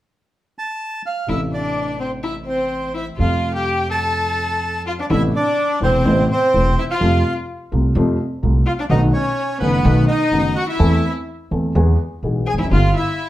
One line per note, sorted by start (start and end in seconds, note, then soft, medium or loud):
0.58 1.02 A5 medium
1.06 1.28 F5 medium
1.27 3.09 A1 soft
1.27 3.09 A2 soft
1.27 3.08 C3 soft
1.27 3.09 A3 soft
1.27 3.10 C4 soft
1.27 1.39 E4 soft
1.27 3.10 E4 soft
1.27 1.41 E5 medium
1.53 1.97 D4 soft
1.53 1.98 D5 medium
2.00 2.11 C4 soft
2.00 2.12 C5 medium
2.23 2.34 E4 medium
2.23 2.35 E5 medium
2.46 2.91 C4 medium
2.46 2.93 C5 medium
2.94 3.05 E4 soft
2.94 3.07 E5 medium
3.17 5.00 F2 soft
3.17 4.99 C3 soft
3.17 5.00 F3 soft
3.17 5.00 G3 soft
3.17 5.01 A3 soft
3.17 3.51 F4 medium
3.17 3.53 F5 medium
3.21 5.01 F4 soft
3.54 3.87 G4 medium
3.54 3.88 G5 medium
3.90 4.82 A4 medium
3.90 4.82 A5 medium
4.87 4.92 F4 medium
4.87 4.93 F4 medium
4.87 4.93 F5 medium
4.99 5.04 D4 medium
4.99 5.06 D4 soft
4.99 5.06 D5 medium
5.09 5.30 A1 medium
5.09 5.30 A2 medium
5.09 5.30 C3 soft
5.09 5.30 A3 soft
5.09 5.30 B3 soft
5.09 5.20 E4 medium
5.09 5.30 E4 medium
5.09 5.23 E4 medium
5.09 5.22 E5 medium
5.34 5.78 D4 medium
5.34 5.79 D4 medium
5.34 5.79 D5 medium
5.81 6.02 E1 soft
5.81 6.01 E2 soft
5.81 6.01 C3 soft
5.81 6.01 A3 soft
5.81 6.02 B3 soft
5.81 6.26 C4 medium
5.81 6.27 C4 medium
5.81 6.02 E4 soft
5.81 6.27 C5 medium
6.05 6.25 A1 medium
6.05 6.26 A1 medium
6.05 6.26 A2 medium
6.05 6.25 C3 medium
6.05 6.26 A3 soft
6.05 6.26 B3 soft
6.05 6.26 E4 medium
6.30 6.74 C4 medium
6.30 6.75 C4 medium
6.30 6.80 C5 medium
6.53 6.73 E1 soft
6.53 6.74 E1 soft
6.53 6.73 E2 soft
6.53 6.73 C3 soft
6.53 6.73 A3 soft
6.53 6.73 B3 soft
6.53 6.74 E4 soft
6.79 6.84 E4 medium
6.79 6.85 E4 medium
6.79 6.84 E5 medium
6.90 7.34 F4 medium
6.90 7.34 F4 soft
6.90 7.34 F5 medium
7.00 7.20 F2 medium
7.00 7.21 F2 medium
7.00 7.20 C3 soft
7.00 7.20 F3 medium
7.00 7.21 G3 medium
7.00 7.21 A3 soft
7.00 7.21 F4 medium
7.72 7.92 C2 soft
7.72 7.92 C2 medium
7.72 7.92 C3 soft
7.72 7.92 G3 soft
7.72 7.92 A3 soft
7.72 7.92 F4 soft
7.95 8.15 F2 medium
7.95 8.16 C3 medium
7.95 8.16 F3 medium
7.95 8.16 G3 medium
7.95 8.16 A3 medium
7.95 8.16 F4 medium
8.42 8.62 C2 soft
8.42 8.62 C3 soft
8.42 8.62 G3 soft
8.42 8.62 A3 soft
8.42 8.62 F4 soft
8.66 8.71 F4 medium
8.66 8.73 F4 medium
8.66 8.73 F5 medium
8.79 8.84 D4 medium
8.79 8.85 D4 soft
8.79 8.85 D5 medium
8.90 9.10 B1 medium
8.90 9.10 B2 medium
8.90 9.09 D#3 medium
8.90 9.10 A3 medium
8.90 9.10 B3 medium
8.90 9.00 D#4 medium
8.90 9.02 D#4 medium
8.90 9.10 F#4 medium
8.90 9.01 D#5 medium
9.13 9.58 C#4 medium
9.13 9.57 C#5 medium
9.60 9.80 F#1 medium
9.60 9.81 F#1 soft
9.60 9.81 F#2 soft
9.60 9.81 D#3 soft
9.60 9.80 A3 soft
9.60 9.80 B3 soft
9.60 10.05 B3 medium
9.60 9.81 F#4 soft
9.60 10.04 B4 medium
9.84 10.04 B1 medium
9.84 10.04 B2 medium
9.84 10.04 D#3 medium
9.84 10.04 A3 medium
9.84 10.04 B3 medium
9.84 10.05 F#4 medium
10.08 10.52 D#4 medium
10.08 10.53 D#4 medium
10.08 10.57 D#5 medium
10.32 10.52 F#1 soft
10.32 10.52 F#2 soft
10.32 10.52 D#3 soft
10.32 10.52 A3 soft
10.32 10.52 B3 soft
10.32 10.52 F#4 soft
10.56 10.67 F#4 medium
10.56 10.67 F#5 medium
10.69 11.12 E4 medium
10.69 11.13 E4 medium
10.69 11.13 E5 medium
10.79 10.99 E2 medium
10.79 11.00 E2 medium
10.79 10.99 E3 medium
10.79 10.99 A3 medium
10.79 10.99 C4 medium
10.79 10.99 A4 medium
11.51 11.71 E2 medium
11.51 11.71 E2 soft
11.51 11.71 E3 soft
11.51 11.71 A3 soft
11.51 11.71 C4 soft
11.51 11.71 A4 soft
11.75 11.95 E2 medium
11.75 11.95 E3 medium
11.75 11.95 G#3 medium
11.75 11.96 B3 medium
11.75 11.96 G#4 medium
12.23 12.43 B1 soft
12.23 12.44 B1 soft
12.23 12.44 B2 soft
12.23 12.44 E3 soft
12.23 12.44 G#3 soft
12.23 12.44 B3 soft
12.23 12.44 G#4 soft
12.46 12.52 G#4 medium
12.46 12.55 G#4 medium
12.46 12.54 G#5 medium
12.54 12.59 E1 soft
12.54 12.60 E2 soft
12.58 12.64 F1 soft
12.58 12.65 F2 soft
12.58 12.64 E4 medium
12.58 12.66 E5 medium
12.63 12.71 F#1 medium
12.63 12.71 F#2 medium
12.63 12.67 E4 soft
12.71 12.91 G1 medium
12.71 12.92 G2 medium
12.71 12.91 D3 medium
12.71 12.91 G3 soft
12.71 12.91 B3 soft
12.71 12.93 F4 medium
12.71 12.95 F4 medium
12.71 12.92 G4 medium
12.71 12.94 F5 medium
12.93 13.29 E4 medium
12.93 13.29 E5 medium
12.99 13.29 E4 medium